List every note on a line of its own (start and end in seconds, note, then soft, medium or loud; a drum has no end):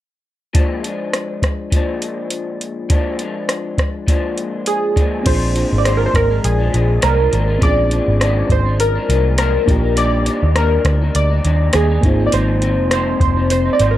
0.53 0.84 A#2 medium
0.53 0.84 F3 medium
0.53 0.83 G#3 medium
0.53 0.82 D4 medium
0.53 kick loud
0.53 closed hi-hat medium
0.83 1.73 F3 soft
0.83 1.74 G#3 soft
0.83 1.76 D4 soft
0.83 closed hi-hat soft
1.13 cross-stick medium
1.13 closed hi-hat medium
1.42 kick medium
1.42 cross-stick medium
1.42 closed hi-hat soft
1.71 2.88 A#2 medium
1.71 2.89 F3 medium
1.71 kick medium
1.71 closed hi-hat medium
1.75 2.90 G#3 medium
1.75 2.90 D4 medium
2.02 closed hi-hat soft
2.30 closed hi-hat medium
2.61 closed hi-hat soft
2.89 3.19 A#2 medium
2.89 3.20 F3 medium
2.89 3.19 G#3 medium
2.89 3.18 D4 medium
2.89 kick loud
2.89 closed hi-hat medium
3.19 4.07 F3 soft
3.19 4.08 G#3 soft
3.19 4.09 D4 soft
3.19 closed hi-hat soft
3.49 cross-stick medium
3.49 closed hi-hat medium
3.78 kick medium
3.78 cross-stick medium
3.78 closed hi-hat soft
4.07 4.96 A#2 medium
4.07 4.97 F3 medium
4.07 4.96 G#3 medium
4.07 4.96 D4 medium
4.07 kick medium
4.07 closed hi-hat medium
4.38 closed hi-hat soft
4.66 5.28 G#4 medium
4.66 closed hi-hat medium
4.96 5.23 A#2 medium
4.96 5.25 F3 medium
4.96 5.25 G#3 medium
4.96 5.25 D4 medium
4.96 kick medium
4.96 closed hi-hat soft
5.23 5.63 A#1 medium
5.23 5.53 A#2 medium
5.23 5.54 F3 medium
5.23 5.55 G#3 medium
5.23 7.56 C4 medium
5.23 7.57 D4 medium
5.23 5.56 D4 medium
5.23 7.58 F4 medium
5.23 5.80 C5 medium
5.23 kick loud
5.23 closed hi-hat medium
5.23 crash medium
5.28 7.59 G#4 medium
5.55 5.83 A#2 medium
5.55 5.84 F3 medium
5.55 5.85 G#3 medium
5.55 5.85 D4 medium
5.55 closed hi-hat soft
5.73 6.06 G#1 medium
5.78 5.87 D5 medium
5.84 6.30 A#2 medium
5.84 6.31 F3 medium
5.84 6.30 G#3 medium
5.84 6.29 D4 medium
5.84 5.97 C5 medium
5.84 cross-stick medium
5.84 closed hi-hat medium
5.97 6.06 A#4 medium
6.06 6.14 C5 medium
6.14 6.38 G#1 medium
6.14 6.45 A#4 medium
6.14 kick medium
6.14 cross-stick medium
6.14 closed hi-hat soft
6.30 6.60 F3 soft
6.30 6.59 G#3 soft
6.30 6.57 D4 soft
6.44 6.68 A#1 medium
6.44 6.99 G#4 medium
6.44 closed hi-hat medium
6.59 6.72 F3 soft
6.59 6.73 G#3 soft
6.59 6.73 D4 soft
6.72 6.97 A#1 medium
6.72 7.00 A#2 medium
6.72 7.01 F3 medium
6.72 7.02 G#3 medium
6.72 7.02 D4 medium
6.72 closed hi-hat soft
7.02 7.27 C2 medium
7.02 7.18 A#2 medium
7.02 7.19 F3 medium
7.02 7.18 G#3 medium
7.02 7.16 D4 medium
7.02 7.58 A#4 medium
7.02 cross-stick medium
7.02 closed hi-hat medium
7.18 7.31 F3 soft
7.18 7.32 G#3 soft
7.18 7.32 D4 soft
7.31 7.56 G#1 medium
7.31 7.48 A#2 medium
7.31 7.49 F3 medium
7.31 7.47 G#3 medium
7.31 7.46 D4 medium
7.31 closed hi-hat soft
7.48 7.60 F3 soft
7.48 7.61 G#3 soft
7.48 7.61 D4 soft
7.58 7.98 A#1 loud
7.58 7.89 A#2 medium
7.58 7.89 F3 medium
7.58 7.91 G#3 medium
7.58 9.62 C4 medium
7.58 7.68 C#4 soft
7.58 9.64 F4 medium
7.58 kick loud
7.58 closed hi-hat medium
7.62 7.91 D4 medium
7.62 9.65 G#4 medium
7.62 8.53 D5 loud
7.67 9.65 D4 medium
7.90 8.19 A#2 medium
7.90 8.20 F3 medium
7.90 8.20 G#3 medium
7.90 8.21 D4 medium
7.90 closed hi-hat soft
8.08 8.42 G#1 medium
8.20 8.66 A#2 medium
8.20 8.66 F3 medium
8.20 8.65 G#3 medium
8.20 8.64 D4 medium
8.20 cross-stick medium
8.20 closed hi-hat medium
8.50 8.97 G#1 medium
8.50 8.78 C5 medium
8.50 kick medium
8.50 closed hi-hat soft
8.66 8.97 F3 soft
8.66 8.95 G#3 soft
8.66 8.94 D4 soft
8.80 9.38 A#4 medium
8.80 closed hi-hat medium
8.95 9.08 F3 soft
8.95 9.09 G#3 soft
8.95 9.09 D4 soft
9.09 9.56 C2 medium
9.09 9.36 A#2 medium
9.09 9.37 F3 medium
9.09 9.38 G#3 medium
9.09 9.38 D4 medium
9.09 closed hi-hat soft
9.38 9.54 A#2 medium
9.38 9.54 F3 medium
9.38 9.54 G#3 medium
9.38 9.53 D4 medium
9.38 9.94 A#4 medium
9.38 cross-stick medium
9.38 closed hi-hat medium
9.54 9.67 F3 soft
9.54 9.68 G#3 soft
9.54 9.67 D4 soft
9.65 10.28 A#1 medium
9.65 9.83 A#2 medium
9.65 9.83 G3 medium
9.65 11.98 A#3 medium
9.65 11.99 D4 medium
9.65 9.82 D4 medium
9.65 9.81 D#4 medium
9.65 12.00 F4 soft
9.65 kick medium
9.65 closed hi-hat soft
9.70 12.01 G4 medium
9.82 9.95 G3 soft
9.82 9.95 D4 soft
9.82 9.96 D#4 soft
9.95 10.23 A#2 medium
9.95 10.25 G3 medium
9.95 10.25 D4 medium
9.95 10.26 D#4 medium
9.95 10.58 D5 medium
9.95 closed hi-hat medium
10.25 10.54 A#2 medium
10.25 10.55 G3 medium
10.25 10.55 D4 medium
10.25 10.55 D#4 medium
10.25 closed hi-hat soft
10.43 10.77 D#2 medium
10.55 11.01 A#2 medium
10.55 11.02 G3 medium
10.55 11.01 D4 medium
10.55 11.00 D#4 medium
10.55 11.17 A#4 medium
10.55 cross-stick medium
10.55 closed hi-hat medium
10.85 11.09 D2 medium
10.85 kick medium
10.85 cross-stick medium
10.85 closed hi-hat soft
11.01 11.31 G3 soft
11.01 11.30 D4 medium
11.01 11.29 D#4 medium
11.15 11.39 D2 medium
11.15 11.76 D5 medium
11.15 closed hi-hat medium
11.30 11.44 G3 soft
11.30 11.44 D4 soft
11.30 11.44 D#4 soft
11.44 11.68 D#2 medium
11.44 11.71 A#2 medium
11.44 11.72 G3 medium
11.44 11.73 D4 medium
11.44 11.73 D#4 medium
11.44 closed hi-hat soft
11.73 11.98 D#2 medium
11.73 11.89 A#2 medium
11.73 11.90 G3 medium
11.73 11.90 D4 medium
11.73 11.89 D#4 medium
11.73 12.23 G#4 medium
11.73 cross-stick medium
11.73 closed hi-hat medium
11.90 12.03 G3 soft
11.90 12.04 D4 soft
11.90 12.03 D#4 soft
12.01 12.27 G#1 medium
12.01 12.19 G#2 medium
12.01 12.20 F3 medium
12.01 13.98 A#3 medium
12.01 13.98 C4 soft
12.01 12.20 C4 medium
12.01 13.98 D#4 medium
12.01 kick medium
12.01 closed hi-hat soft
12.05 12.18 D#4 medium
12.05 13.98 F4 medium
12.20 12.32 F3 soft
12.20 12.32 C4 soft
12.20 12.32 D#4 soft
12.27 12.33 D5 medium
12.32 12.79 G#1 loud
12.32 12.60 G#2 medium
12.32 12.61 F3 medium
12.32 12.62 C4 medium
12.32 12.63 D#4 medium
12.32 12.92 C5 medium
12.32 closed hi-hat medium
12.62 12.90 G#2 medium
12.62 12.90 F3 medium
12.62 12.91 C4 medium
12.62 12.91 D#4 medium
12.62 closed hi-hat soft
12.79 13.13 F1 medium
12.91 13.37 G#2 medium
12.91 13.37 F3 medium
12.91 13.36 C4 medium
12.91 13.35 D#4 medium
12.91 13.19 C5 medium
12.91 cross-stick medium
12.91 closed hi-hat medium
13.20 13.68 F1 medium
13.20 13.50 C5 medium
13.20 kick medium
13.20 closed hi-hat soft
13.36 13.67 F3 soft
13.36 13.65 C4 soft
13.36 13.64 D#4 soft
13.50 13.72 C5 medium
13.50 closed hi-hat medium
13.65 13.78 F3 soft
13.65 13.79 C4 soft
13.65 13.79 D#4 soft
13.73 13.82 D5 medium
13.78 13.98 G#1 medium
13.78 13.98 G#2 medium
13.78 13.98 F3 medium
13.78 13.98 C4 medium
13.78 13.98 D#4 medium
13.78 13.92 C5 medium
13.78 closed hi-hat soft
13.91 13.98 A#4 medium